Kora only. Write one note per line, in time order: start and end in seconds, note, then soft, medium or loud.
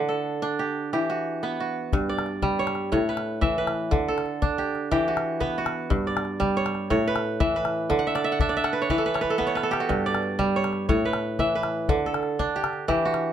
0.00 0.98 D3 medium
0.00 0.83 B4 medium
0.00 0.46 E5 medium
0.09 1.40 A4 medium
0.42 2.10 D4 medium
0.59 0.93 G4 medium
0.93 1.98 E3 medium
0.93 1.66 G4 medium
1.10 1.60 F#4 medium
1.43 3.29 B3 medium
1.43 2.66 B4 medium
1.60 2.48 F#4 soft
1.93 2.97 G2 medium
2.09 2.65 D5 medium
2.42 2.97 G3 medium
2.59 2.91 C#5 medium
2.92 3.97 A2 medium
2.92 3.97 C#5 medium
3.09 3.58 B4 medium
3.41 3.97 E3 medium
3.41 4.45 E5 medium
3.58 4.81 B4 medium
3.91 4.97 D3 medium
4.08 5.40 A4 medium
4.42 6.10 D4 medium
4.58 4.91 G4 medium
4.91 5.96 E3 medium
4.91 5.64 G4 medium
5.08 5.57 F#4 medium
5.40 7.27 B3 medium
5.40 6.64 B4 medium
5.58 6.46 F#4 medium
5.90 6.96 G2 medium
6.07 6.63 D5 medium
6.40 6.96 G3 medium
6.57 6.90 C#5 medium
6.90 7.96 A2 medium
6.90 7.96 C#5 medium
7.08 7.56 B4 medium
7.40 7.96 E3 medium
7.40 8.06 E5 medium
7.56 8.72 B4 medium
7.90 8.95 D3 medium
7.99 8.31 F#5 medium
8.07 8.24 E5 medium
8.15 8.49 D5 medium
8.24 8.40 E5 medium
8.32 8.63 F#5 medium
8.40 8.88 D4 medium
8.40 8.56 E5 medium
8.49 8.88 D5 medium
8.57 9.60 E5 medium
8.64 9.60 F#5 medium
8.73 8.90 B4 medium
8.82 9.14 C#5 medium
8.90 9.95 E3 medium
8.90 9.05 B4 medium
8.98 9.30 A4 medium
9.06 9.21 B4 medium
9.14 9.46 C#5 medium
9.21 9.38 B4 medium
9.30 9.63 A4 medium
9.38 11.24 B3 medium
9.38 9.55 B4 medium
9.47 10.12 C#5 medium
9.55 10.78 B4 medium
9.63 10.95 A4 medium
9.71 11.12 G4 medium
9.80 10.45 F#4 medium
9.89 10.95 G2 medium
10.06 10.62 D5 medium
10.39 10.95 G3 medium
10.56 10.88 C#5 medium
10.89 11.94 A2 medium
10.89 11.95 C#5 medium
11.05 11.55 B4 medium
11.39 11.94 E3 medium
11.39 12.43 E5 medium
11.55 12.78 B4 medium
11.89 12.94 D3 medium
12.06 13.33 A4 medium
12.39 13.33 D4 medium
12.56 12.88 G4 medium
12.88 13.33 E3 medium
12.88 13.33 G4 medium
13.05 13.33 F#4 medium